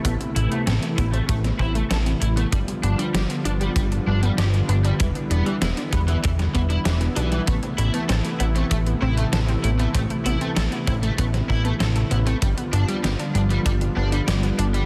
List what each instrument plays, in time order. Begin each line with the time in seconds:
Already playing: supersaw synth C3 E3 A3 B3 E4
0.05 analog synth bass A1, overdriven electric guitar A3, synth arpeggio sound B3, kick, closed hi-hat
0.21 synth arpeggio sound C4, closed hi-hat
0.36 analog synth bass A1, synth arpeggio sound A3, overdriven electric guitar E4, closed hi-hat
0.52 overdriven electric guitar A3, synth arpeggio sound B3, closed hi-hat
0.67 analog synth bass A1, synth arpeggio sound C4, overdriven electric guitar A4, snare, closed hi-hat
0.83 synth arpeggio sound A3, closed hi-hat
0.98 analog synth bass A1, synth arpeggio sound B3, overdriven electric guitar E4, kick, closed hi-hat
1.13 overdriven electric guitar A3, synth arpeggio sound C4, closed hi-hat
1.29 analog synth bass A1, synth arpeggio sound A3, overdriven electric guitar A3, kick, closed hi-hat
1.44 synth arpeggio sound B3, snare, closed hi-hat
1.59 analog synth bass A1, synth arpeggio sound C4, overdriven electric guitar E4, kick
1.75 synth arpeggio sound A3, overdriven electric guitar A3, closed hi-hat
1.91 analog synth bass A1, synth arpeggio sound B3, overdriven electric guitar A4, snare, closed hi-hat
2.06 synth arpeggio sound C4, closed hi-hat
2.22 analog synth bass A1, synth arpeggio sound A3, overdriven electric guitar E4, closed hi-hat
2.37 overdriven electric guitar A3, synth arpeggio sound B3, closed hi-hat
2.52 analog synth bass G1, supersaw synth D3 F3 G3 F4, overdriven electric guitar G3, synth arpeggio sound D4, kick, closed hi-hat
2.68 synth arpeggio sound G3, closed hi-hat
2.83 analog synth bass G1, synth arpeggio sound B3, overdriven electric guitar D4, closed hi-hat
2.99 overdriven electric guitar G3, synth arpeggio sound D4, closed hi-hat
3.14 analog synth bass G1, synth arpeggio sound G3, overdriven electric guitar G4, snare, closed hi-hat
3.30 synth arpeggio sound B3, closed hi-hat
3.45 analog synth bass G1, synth arpeggio sound D4, overdriven electric guitar D4, closed hi-hat
3.61 synth arpeggio sound G3, overdriven electric guitar G3, closed hi-hat
3.76 analog synth bass G1, overdriven electric guitar G3, synth arpeggio sound B3, kick, closed hi-hat
3.92 synth arpeggio sound D4, closed hi-hat
4.07 analog synth bass G1, synth arpeggio sound G3, overdriven electric guitar D4
4.23 overdriven electric guitar G3, synth arpeggio sound B3, closed hi-hat
4.38 analog synth bass G1, synth arpeggio sound D4, overdriven electric guitar G4, snare, closed hi-hat
4.54 synth arpeggio sound G3, closed hi-hat
4.69 analog synth bass G1, synth arpeggio sound B3, overdriven electric guitar D4, closed hi-hat
4.84 overdriven electric guitar G3, synth arpeggio sound D4, closed hi-hat
5.00 analog synth bass E1, overdriven electric guitar E3, supersaw synth E3 E4, synth arpeggio sound G3, kick, closed hi-hat
5.15 synth arpeggio sound B3, closed hi-hat
5.31 analog synth bass E1, overdriven electric guitar B3, synth arpeggio sound D4, closed hi-hat
5.46 overdriven electric guitar E3, synth arpeggio sound G3, closed hi-hat
5.62 analog synth bass E1, synth arpeggio sound B3, overdriven electric guitar E4, snare, closed hi-hat
5.77 synth arpeggio sound D4, closed hi-hat
5.93 analog synth bass E1, synth arpeggio sound G3, overdriven electric guitar B3, kick, closed hi-hat
6.08 overdriven electric guitar E3, synth arpeggio sound B3, closed hi-hat
6.23 analog synth bass E1, overdriven electric guitar E3, synth arpeggio sound D4, kick, closed hi-hat
6.39 synth arpeggio sound G3, snare, closed hi-hat
6.54 analog synth bass E1, overdriven electric guitar E3, synth arpeggio sound B3, kick, closed hi-hat
6.70 synth arpeggio sound D4, overdriven electric guitar E4, closed hi-hat
6.85 analog synth bass E1, overdriven electric guitar E3, synth arpeggio sound G3, snare, closed hi-hat
7.01 synth arpeggio sound B3, closed hi-hat
7.16 analog synth bass B1, overdriven electric guitar E3, synth arpeggio sound D4, closed hi-hat
7.32 overdriven electric guitar E3, synth arpeggio sound G3, closed hi-hat
7.47 analog synth bass A1, supersaw synth C3 A3, overdriven electric guitar A3, synth arpeggio sound B3, kick, closed hi-hat
7.63 synth arpeggio sound C4, closed hi-hat
7.78 analog synth bass A1, synth arpeggio sound A3, overdriven electric guitar E4, closed hi-hat
7.94 overdriven electric guitar A3, synth arpeggio sound B3, closed hi-hat
8.09 analog synth bass A1, synth arpeggio sound C4, overdriven electric guitar A4, snare, closed hi-hat
8.25 synth arpeggio sound A3, closed hi-hat
8.40 analog synth bass A1, synth arpeggio sound B3, overdriven electric guitar E4, closed hi-hat
8.56 overdriven electric guitar A3, synth arpeggio sound C4, closed hi-hat
8.71 analog synth bass A1, synth arpeggio sound A3, overdriven electric guitar A3, kick, closed hi-hat
8.87 synth arpeggio sound B3, closed hi-hat
9.02 analog synth bass A1, synth arpeggio sound C4, overdriven electric guitar E4
9.17 synth arpeggio sound A3, overdriven electric guitar A3, closed hi-hat
9.33 analog synth bass A1, synth arpeggio sound B3, overdriven electric guitar A4, snare, closed hi-hat
9.49 synth arpeggio sound C4, closed hi-hat
9.64 analog synth bass A1, synth arpeggio sound A3, overdriven electric guitar E4, closed hi-hat
9.79 overdriven electric guitar A3, synth arpeggio sound B3, closed hi-hat
9.95 analog synth bass A1, overdriven electric guitar A3, synth arpeggio sound C4, kick, closed hi-hat
10.10 synth arpeggio sound A3, closed hi-hat
10.26 analog synth bass A1, synth arpeggio sound B3, overdriven electric guitar E4, closed hi-hat
10.41 overdriven electric guitar A3, synth arpeggio sound C4, closed hi-hat
10.56 analog synth bass A1, synth arpeggio sound A3, overdriven electric guitar A4, snare, closed hi-hat
10.72 synth arpeggio sound B3, closed hi-hat
10.87 analog synth bass A1, synth arpeggio sound C4, overdriven electric guitar E4, kick, closed hi-hat
11.03 synth arpeggio sound A3, overdriven electric guitar A3, closed hi-hat
11.18 analog synth bass A1, overdriven electric guitar A3, synth arpeggio sound B3, kick, closed hi-hat
11.34 synth arpeggio sound C4, snare, closed hi-hat
11.49 analog synth bass A1, synth arpeggio sound A3, overdriven electric guitar E4, kick
11.65 overdriven electric guitar A3, synth arpeggio sound B3, closed hi-hat
11.80 analog synth bass A1, synth arpeggio sound C4, overdriven electric guitar A4, snare, closed hi-hat
11.96 synth arpeggio sound A3, closed hi-hat
12.11 analog synth bass A1, synth arpeggio sound B3, overdriven electric guitar E4, closed hi-hat
12.26 overdriven electric guitar A3, synth arpeggio sound C4, closed hi-hat
12.42 analog synth bass G1, supersaw synth D3 F3 G3 B3 F4, synth arpeggio sound G3, overdriven electric guitar G3, kick, closed hi-hat
12.58 synth arpeggio sound B3, closed hi-hat
12.73 analog synth bass G1, overdriven electric guitar D4, synth arpeggio sound D4, closed hi-hat
12.88 synth arpeggio sound G3, overdriven electric guitar G3, closed hi-hat
13.04 analog synth bass G1, synth arpeggio sound B3, overdriven electric guitar G4, snare, closed hi-hat
13.19 synth arpeggio sound D4, closed hi-hat
13.35 analog synth bass G1, synth arpeggio sound G3, overdriven electric guitar D4, closed hi-hat
13.50 overdriven electric guitar G3, synth arpeggio sound B3, closed hi-hat
13.66 analog synth bass G1, overdriven electric guitar G3, synth arpeggio sound D4, kick, closed hi-hat
13.81 synth arpeggio sound G3, closed hi-hat
13.97 analog synth bass G1, synth arpeggio sound B3, overdriven electric guitar D4
14.12 overdriven electric guitar G3, synth arpeggio sound D4, closed hi-hat
14.28 analog synth bass G1, synth arpeggio sound G3, overdriven electric guitar G4, snare, closed hi-hat
14.43 synth arpeggio sound B3, closed hi-hat
14.58 analog synth bass G1, synth arpeggio sound D4, overdriven electric guitar D4, closed hi-hat
14.74 synth arpeggio sound G3, overdriven electric guitar G3, closed hi-hat